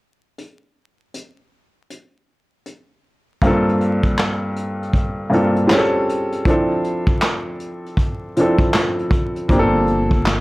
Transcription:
0.38 closed hi-hat
1.14 closed hi-hat
1.90 closed hi-hat
2.66 closed hi-hat
3.42 felt piano G2 A#3 C4 D4 F4, kick, closed hi-hat
3.47 felt piano A4
3.69 closed hi-hat
3.80 closed hi-hat
4.03 kick, closed hi-hat
4.18 snare, clap, closed hi-hat
4.56 closed hi-hat
4.83 closed hi-hat
4.93 kick, closed hi-hat
5.30 felt piano G2 A#3 C4 D4 F4, closed hi-hat
5.34 felt piano A4
5.56 closed hi-hat
5.67 felt piano G3 C4 C#4 F4, snare, clap
5.72 felt piano G#4, closed hi-hat
5.78 felt piano A4
6.09 closed hi-hat
6.32 closed hi-hat
6.45 felt piano F3 C4 D4 E4, kick, closed hi-hat
6.50 felt piano A4
6.84 closed hi-hat
7.07 kick, closed hi-hat
7.22 snare, clap, closed hi-hat
7.60 closed hi-hat
7.86 closed hi-hat
7.97 kick, closed hi-hat
8.36 felt piano F3 C4 D4 E4, closed hi-hat
8.41 felt piano A4
8.58 kick, closed hi-hat
8.74 snare, clap, closed hi-hat
8.99 closed hi-hat
9.11 kick, closed hi-hat
9.36 closed hi-hat
9.48 upright bass G1, felt piano F3 A#3 C4 D4, kick, closed hi-hat
9.53 felt piano G4
9.59 felt piano A4
9.88 closed hi-hat
10.11 kick, closed hi-hat
10.26 snare, clap, closed hi-hat

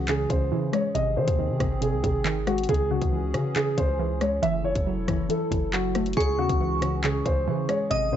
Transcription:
Already playing: 808-style bass C#2, synth pluck E3, analog synth pad E3 C#4 G#4
0.08 synth pluck C#3, grand piano G#4, clap, closed hi-hat
0.30 808-style bass C#2, synth pluck C#3, grand piano C5, kick, closed hi-hat
0.52 808-style bass C#3, synth pluck E3
0.73 synth pluck G#3, grand piano C#5, cross-stick, closed hi-hat
0.95 808-style bass G#1, synth pluck C3, analog synth pad D#3 C4 G#4, grand piano D#5, closed hi-hat
1.17 synth pluck C3, 808-style bass D#3, grand piano C5
1.28 808-style bass D#2, kick, closed hi-hat
1.39 synth pluck D#3
1.49 808-style bass C3
1.60 808-style bass G#1, synth pluck C3, kick, cross-stick, closed hi-hat
1.82 synth pluck C3, grand piano G#4, closed hi-hat
1.93 808-style bass C2
2.03 808-style bass G#1, synth pluck C3, grand piano G#4, kick, closed hi-hat
2.25 synth pluck D#3, clap, closed hi-hat
2.47 synth pluck G#3, grand piano F#4, cross-stick, closed hi-hat
2.58 closed hi-hat
2.63 closed hi-hat
2.69 808-style bass C#2, synth pluck C#3, analog synth pad E3 C#4 G#4, grand piano G#4, kick, closed hi-hat
2.74 closed hi-hat
2.91 synth pluck C#3, grand piano F#4
3.02 808-style bass C#2, kick, closed hi-hat
3.12 synth pluck E3
3.34 808-style bass C#3, synth pluck C#3, cross-stick, closed hi-hat
3.56 synth pluck C#3, grand piano G#4, clap, closed hi-hat
3.78 808-style bass C#2, synth pluck C#3, grand piano C5, kick, closed hi-hat
3.99 synth pluck E3
4.21 synth pluck G#3, grand piano C#5, cross-stick, closed hi-hat
4.42 808-style bass F#1, synth pluck E3, analog synth pad F#3 E4 A4, grand piano E5, closed hi-hat
4.64 synth pluck E3, grand piano C#5
4.75 808-style bass F#1, kick, closed hi-hat
4.87 synth pluck F#3
4.97 808-style bass E1
5.08 808-style bass F#1, synth pluck E3, kick, cross-stick, closed hi-hat
5.29 synth pluck E3, grand piano A4, closed hi-hat
5.51 808-style bass F#1, synth pluck E3, kick, closed hi-hat
5.73 synth pluck F#3, grand piano F#4, clap, closed hi-hat
5.95 synth pluck A3, cross-stick, closed hi-hat
6.06 closed hi-hat
6.13 808-style bass C#2, synth pluck C#3, analog synth pad E3 C#4 G#4, grand piano G#4, synth bell C#6, kick, closed hi-hat
6.20 closed hi-hat
6.38 808-style bass E2, synth pluck C#3, grand piano F#4
6.49 808-style bass C#2, kick, closed hi-hat
6.61 synth pluck E3
6.82 synth pluck C#3, cross-stick, closed hi-hat
7.04 synth pluck C#3, grand piano G#4, clap, closed hi-hat
7.26 808-style bass C#2, synth pluck C#3, grand piano C5, kick, closed hi-hat
7.47 808-style bass C#3, synth pluck E3
7.69 synth pluck G#3, grand piano C#5, cross-stick, closed hi-hat
7.90 808-style bass G#1, synth pluck C3, analog synth pad D#3 C4, grand piano D#5, synth bell D#6, closed hi-hat
8.12 synth pluck C3, 808-style bass D#3, grand piano C5

